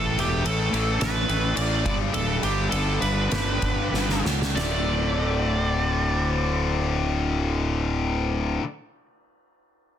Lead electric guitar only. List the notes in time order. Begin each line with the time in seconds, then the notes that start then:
Already playing: A4
0.20 G4
0.46 A4
1.00 B4
1.57 D5
2.14 A4
2.44 G4
2.70 A4
3.01 B4
4.56 D5